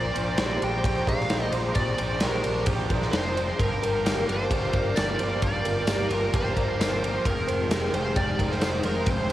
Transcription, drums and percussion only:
0.16 ride medium
0.38 snare loud
0.38 ride medium
0.62 ride medium
0.84 kick loud
0.84 ride loud
1.07 kick medium
1.07 ride medium
1.20 snare soft
1.30 snare loud
1.30 ride medium
1.52 ride medium
1.75 kick loud
1.75 ride medium
1.98 ride medium
2.20 snare loud
2.20 ride loud
2.44 ride medium
2.66 kick loud
2.66 ride loud
2.90 kick medium
2.90 ride medium
3.02 snare soft
3.13 snare loud
3.13 ride medium
3.37 ride medium
3.60 kick loud
3.60 ride medium
3.83 ride medium
4.06 snare loud
4.06 ride loud
4.06 tambourine medium
4.29 ride medium
4.51 kick loud
4.51 ride medium
4.73 kick medium
4.73 ride medium
4.96 snare loud
4.96 ride medium
4.96 tambourine medium
5.19 ride medium
5.42 kick medium
5.42 ride medium
5.65 ride medium
5.87 snare loud
5.87 ride loud
5.87 tambourine loud
6.11 ride medium
6.34 kick loud
6.34 ride loud
6.57 kick medium
6.57 ride medium
6.81 snare loud
6.81 ride loud
6.81 tambourine loud
7.04 ride medium
7.25 kick loud
7.25 ride medium
7.49 ride medium
7.71 snare loud
7.71 ride loud
7.71 tambourine loud
7.94 ride medium
8.16 kick loud
8.16 ride medium
8.39 kick medium
8.39 ride medium
8.51 snare soft
8.61 snare loud
8.61 ride medium
8.61 tambourine medium
8.83 ride medium
9.06 kick loud
9.06 ride medium

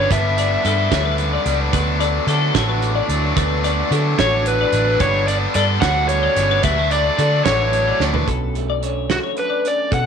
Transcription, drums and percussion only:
0.11 kick loud
0.11 closed hi-hat medium
0.38 closed hi-hat medium
0.65 closed hi-hat medium
0.92 kick medium
0.92 snare loud
0.92 closed hi-hat medium
1.18 closed hi-hat medium
1.46 closed hi-hat medium
1.73 kick loud
1.73 closed hi-hat medium
2.01 closed hi-hat medium
2.28 closed hi-hat medium
2.55 kick medium
2.55 snare loud
2.55 closed hi-hat loud
2.82 closed hi-hat medium
3.09 closed hi-hat medium
3.37 kick loud
3.37 closed hi-hat loud
3.64 closed hi-hat medium
3.92 closed hi-hat medium
4.19 kick medium
4.19 snare loud
4.19 closed hi-hat medium
4.46 closed hi-hat medium
4.73 closed hi-hat medium
5.00 kick loud
5.00 closed hi-hat medium
5.28 closed hi-hat medium
5.54 closed hi-hat medium
5.82 kick medium
5.82 snare loud
5.82 closed hi-hat loud
6.09 closed hi-hat medium
6.37 closed hi-hat medium
6.63 kick loud
6.63 closed hi-hat loud
6.91 closed hi-hat medium
7.19 closed hi-hat medium
7.46 kick medium
7.46 snare loud
7.46 closed hi-hat medium
7.73 closed hi-hat medium
8.00 snare medium
8.14 floor tom medium
8.28 kick loud
8.28 closed hi-hat medium
8.55 closed hi-hat medium
8.83 closed hi-hat medium
9.10 snare loud
9.10 closed hi-hat medium
9.37 closed hi-hat medium
9.65 closed hi-hat medium
9.92 kick loud
9.92 closed hi-hat medium

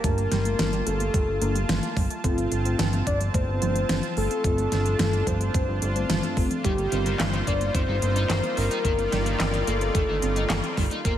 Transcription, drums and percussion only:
0.04 kick loud
0.04 closed hi-hat medium
0.18 closed hi-hat soft
0.32 snare medium
0.32 closed hi-hat medium
0.45 closed hi-hat medium
0.59 snare loud
0.59 closed hi-hat medium
0.73 closed hi-hat soft
0.87 closed hi-hat medium
1.00 closed hi-hat medium
1.14 kick loud
1.14 closed hi-hat medium
1.42 closed hi-hat medium
1.55 closed hi-hat medium
1.69 snare loud
1.69 closed hi-hat medium
1.83 closed hi-hat soft
1.97 kick loud
1.97 open hi-hat medium
2.10 closed hi-hat medium
2.24 kick loud
2.24 closed hi-hat medium
2.38 closed hi-hat soft
2.52 closed hi-hat medium
2.65 closed hi-hat medium
2.79 snare loud
2.79 closed hi-hat medium
2.93 closed hi-hat soft
3.07 kick medium
3.07 closed hi-hat medium
3.21 closed hi-hat medium
3.34 kick loud
3.34 closed hi-hat medium
3.62 closed hi-hat medium
3.76 closed hi-hat medium
3.89 snare loud
3.89 closed hi-hat medium
4.03 closed hi-hat soft
4.17 open hi-hat medium
4.31 closed hi-hat medium
4.44 kick loud
4.44 closed hi-hat medium
4.58 closed hi-hat soft
4.72 snare medium
4.72 closed hi-hat medium
4.86 closed hi-hat soft
4.99 snare loud
4.99 closed hi-hat medium
5.13 closed hi-hat soft
5.27 kick medium
5.27 closed hi-hat medium
5.41 closed hi-hat medium
5.54 kick loud
5.54 closed hi-hat medium
5.82 closed hi-hat medium
5.96 closed hi-hat medium
6.10 snare loud
6.10 closed hi-hat medium
6.23 closed hi-hat soft
6.37 kick loud
6.37 open hi-hat medium
6.51 closed hi-hat medium
6.64 kick loud
6.64 closed hi-hat medium
6.78 closed hi-hat soft
6.92 closed hi-hat medium
7.06 closed hi-hat soft
7.20 snare loud
7.20 clap medium
7.20 closed hi-hat medium
7.33 closed hi-hat soft
7.47 kick medium
7.47 closed hi-hat medium
7.61 closed hi-hat soft
7.75 kick loud
7.75 closed hi-hat medium
8.02 closed hi-hat medium
8.16 closed hi-hat medium
8.30 snare loud
8.30 clap medium
8.30 closed hi-hat medium
8.43 closed hi-hat soft
8.57 open hi-hat medium
8.71 closed hi-hat medium
8.85 kick loud
8.85 closed hi-hat medium
8.99 closed hi-hat soft
9.12 snare medium
9.12 closed hi-hat medium
9.26 closed hi-hat medium
9.40 snare loud
9.40 clap medium
9.40 closed hi-hat medium
9.54 closed hi-hat soft
9.67 closed hi-hat medium
9.81 closed hi-hat soft
9.95 kick loud
9.95 closed hi-hat medium
10.22 closed hi-hat medium
10.36 closed hi-hat medium
10.50 snare loud
10.50 clap loud
10.50 closed hi-hat medium
10.64 closed hi-hat soft
10.77 kick loud
10.77 open hi-hat medium
10.91 closed hi-hat medium
11.05 kick loud
11.05 closed hi-hat medium

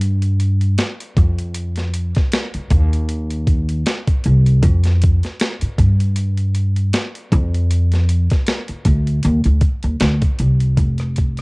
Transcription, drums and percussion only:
0.01 closed hi-hat medium
0.22 closed hi-hat soft
0.40 closed hi-hat medium
0.61 closed hi-hat soft
0.78 snare loud
0.78 closed hi-hat medium
1.00 closed hi-hat soft
1.17 kick loud
1.17 closed hi-hat medium
1.38 closed hi-hat soft
1.54 closed hi-hat medium
1.76 snare soft
1.76 closed hi-hat soft
1.94 closed hi-hat medium
2.15 kick loud
2.15 snare soft
2.15 closed hi-hat soft
2.32 snare loud
2.32 closed hi-hat medium
2.54 closed hi-hat medium
2.70 kick medium
2.70 closed hi-hat medium
2.93 closed hi-hat soft
3.09 closed hi-hat medium
3.30 closed hi-hat soft
3.47 kick medium
3.47 closed hi-hat medium
3.69 closed hi-hat soft
3.86 snare loud
3.86 closed hi-hat medium
4.07 kick medium
4.07 closed hi-hat medium
4.24 closed hi-hat medium
4.46 closed hi-hat soft
4.63 kick loud
4.63 closed hi-hat medium
4.84 snare soft
4.84 closed hi-hat soft
5.02 kick medium
5.02 closed hi-hat medium
5.23 snare soft
5.23 closed hi-hat soft
5.40 snare loud
5.40 closed hi-hat medium
5.61 closed hi-hat medium
5.78 kick medium
5.78 closed hi-hat medium
6.00 closed hi-hat soft
6.16 closed hi-hat medium
6.37 closed hi-hat soft
6.55 closed hi-hat medium
6.76 closed hi-hat soft
6.93 snare loud
6.93 closed hi-hat medium
7.15 closed hi-hat soft
7.32 kick medium
7.32 closed hi-hat medium
7.55 closed hi-hat soft
7.71 closed hi-hat medium
7.92 snare soft
7.92 closed hi-hat soft
8.09 closed hi-hat medium
8.30 kick medium
8.30 snare soft
8.30 closed hi-hat soft
8.47 snare loud
8.47 closed hi-hat medium
8.68 closed hi-hat soft
8.85 kick medium
8.85 closed hi-hat medium
9.07 closed hi-hat soft
9.23 closed hi-hat medium
9.44 closed hi-hat soft
9.61 kick medium
9.61 closed hi-hat medium
9.83 closed hi-hat soft
10.00 snare loud
10.00 closed hi-hat medium
10.22 kick medium
10.22 closed hi-hat medium
10.39 closed hi-hat medium
10.60 closed hi-hat medium
10.77 kick medium
10.77 closed hi-hat medium
10.98 cross-stick soft
10.98 closed hi-hat soft
11.16 kick medium
11.16 closed hi-hat medium
11.37 cross-stick soft
11.37 closed hi-hat soft

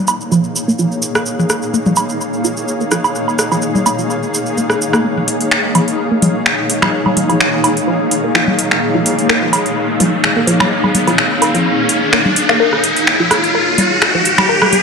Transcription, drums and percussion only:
0.07 cabasa medium
0.07 low woodblock medium
0.21 cabasa soft
0.32 cabasa soft
0.44 cabasa soft
0.56 cabasa loud
0.69 cabasa soft
0.79 cabasa medium
0.92 cabasa soft
1.02 cabasa loud
1.15 cross-stick medium
1.15 cabasa soft
1.26 cabasa medium
1.40 cabasa soft
1.49 cross-stick medium
1.49 cabasa medium
1.62 cabasa soft
1.74 cabasa medium
1.86 low conga medium
1.86 cabasa soft
1.96 cabasa loud
1.96 low woodblock medium
2.09 cabasa soft
2.21 cabasa medium
2.33 cabasa soft
2.44 cabasa medium
2.57 cabasa soft
2.68 cabasa medium
2.81 cabasa soft
2.91 cross-stick medium
2.91 cabasa medium
3.04 cabasa soft
3.04 low woodblock medium
3.15 cabasa soft
3.28 cabasa soft
3.28 low woodblock soft
3.39 cross-stick medium
3.39 cabasa medium
3.52 cabasa soft
3.52 low woodblock soft
3.62 cabasa medium
3.75 low conga medium
3.75 cabasa soft
3.86 cabasa loud
3.86 low woodblock medium
3.99 cabasa soft
4.10 cabasa soft
4.23 cabasa soft
4.34 cabasa medium
4.46 cabasa soft
4.58 cabasa medium
4.70 cross-stick medium
4.70 cabasa soft
4.82 cabasa medium
4.93 cross-stick medium
4.93 cabasa soft
5.28 open hi-hat medium
5.41 open hi-hat soft
5.51 finger snap medium
5.75 open hi-hat medium
5.75 low woodblock medium
5.88 open hi-hat soft
6.22 open hi-hat medium
6.22 low conga medium
6.46 finger snap medium
6.70 open hi-hat medium
6.82 finger snap medium
6.82 low conga medium
6.82 low woodblock medium
7.06 low conga medium
7.06 low woodblock medium
7.17 open hi-hat medium
7.17 low conga medium
7.29 open hi-hat soft
7.29 low woodblock soft
7.40 finger snap medium
7.64 open hi-hat medium
7.64 low woodblock medium
7.77 open hi-hat soft
8.11 open hi-hat medium
8.35 finger snap medium
8.48 low conga medium
8.59 open hi-hat medium
8.71 finger snap medium
9.06 open hi-hat medium
9.19 open hi-hat soft
9.29 finger snap medium
9.53 open hi-hat medium
9.53 low woodblock medium
9.66 open hi-hat soft
10.00 open hi-hat loud
10.00 low conga medium
10.24 finger snap medium
10.47 open hi-hat medium
10.60 finger snap medium
10.60 low conga medium
10.60 low woodblock medium
10.84 low conga medium
10.84 low woodblock medium
10.95 open hi-hat medium
10.95 low conga medium
11.07 open hi-hat soft
11.07 low woodblock soft
11.18 finger snap medium
11.42 open hi-hat medium
11.42 low woodblock medium
11.55 open hi-hat soft
11.89 open hi-hat medium
12.13 finger snap medium
12.26 low conga medium
12.36 open hi-hat loud
12.49 finger snap medium
12.73 cross-stick soft
12.84 open hi-hat medium
12.96 open hi-hat soft
13.07 finger snap medium
13.31 cross-stick medium
13.31 open hi-hat medium
13.31 low woodblock medium
13.44 open hi-hat soft
13.78 open hi-hat medium
13.78 low conga medium
14.02 finger snap medium
14.02 cross-stick soft
14.25 open hi-hat medium
14.38 finger snap medium
14.38 low conga medium
14.38 low woodblock medium
14.62 cross-stick medium
14.62 low conga medium
14.62 low woodblock medium
14.73 open hi-hat medium
14.73 low conga medium

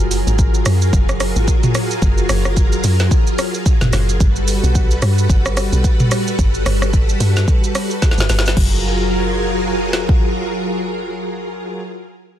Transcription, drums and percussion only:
0.00 shaker medium
0.11 open hi-hat medium
0.11 shaker medium
0.27 shaker medium
0.39 kick loud
0.39 shaker medium
0.54 shaker medium
0.66 cross-stick medium
0.66 open hi-hat medium
0.66 shaker medium
0.82 shaker medium
0.93 kick loud
0.93 shaker medium
1.09 cross-stick loud
1.09 shaker medium
1.20 cross-stick loud
1.20 open hi-hat medium
1.20 shaker loud
1.36 shaker medium
1.48 kick medium
1.48 shaker medium
1.63 mid tom loud
1.63 shaker medium
1.75 cross-stick medium
1.75 open hi-hat medium
1.75 shaker medium
1.91 shaker medium
2.02 kick loud
2.02 shaker medium
2.18 shaker medium
2.29 cross-stick loud
2.29 open hi-hat medium
2.29 shaker medium
2.45 cross-stick medium
2.45 shaker medium
2.57 kick medium
2.57 shaker medium
2.72 shaker medium
2.84 open hi-hat medium
2.84 shaker loud
3.00 snare medium
3.00 shaker medium
3.11 kick loud
3.11 shaker medium
3.27 shaker medium
3.39 cross-stick loud
3.39 open hi-hat medium
3.39 shaker loud
3.54 shaker medium
3.66 kick medium
3.66 shaker medium
3.81 snare medium
3.81 mid tom loud
3.81 shaker medium
3.93 cross-stick medium
3.93 snare medium
3.93 open hi-hat medium
3.93 shaker medium
4.09 shaker medium
4.20 kick loud
4.20 shaker medium
4.36 shaker medium
4.48 open hi-hat medium
4.48 shaker medium
4.64 shaker medium
4.75 kick loud
4.75 shaker medium
4.91 shaker medium
5.02 cross-stick loud
5.02 open hi-hat medium
5.02 shaker medium
5.18 shaker medium
5.29 kick loud
5.29 shaker medium
5.45 cross-stick loud
5.45 shaker medium
5.57 cross-stick loud
5.57 open hi-hat medium
5.57 shaker loud
5.73 shaker medium
5.84 kick medium
5.84 shaker medium
6.00 mid tom loud
6.00 shaker medium
6.11 cross-stick medium
6.11 open hi-hat medium
6.11 shaker medium
6.27 shaker medium
6.39 kick loud
6.39 shaker medium
6.54 shaker medium
6.66 cross-stick loud
6.66 open hi-hat medium
6.66 shaker medium
6.82 cross-stick medium
6.82 shaker medium
6.93 kick medium
6.93 shaker medium
7.09 shaker medium
7.21 open hi-hat medium
7.21 shaker loud
7.37 snare medium
7.37 shaker medium
7.48 kick loud
7.48 shaker medium
7.64 shaker medium
7.75 cross-stick loud
7.75 open hi-hat medium
7.75 shaker loud
7.91 shaker medium
8.02 kick loud
8.02 snare medium
8.02 shaker medium
8.11 snare medium
8.18 snare medium
8.18 shaker medium
8.29 snare medium
8.29 open hi-hat medium
8.29 shaker medium
8.39 snare loud
8.46 snare loud
8.46 shaker medium
8.57 kick loud
8.57 crash medium
9.93 snare medium
10.09 kick medium

